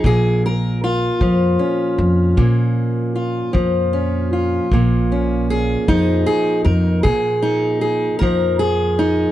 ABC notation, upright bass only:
X:1
M:12/8
L:1/8
Q:3/8=51
K:Bbdor
V:1 name="Upright bass" clef=bass
B,,,3 F,, z F,, B,,3 F,,3 | B,,,3 F,, z F,, B,,3 F,,3 |]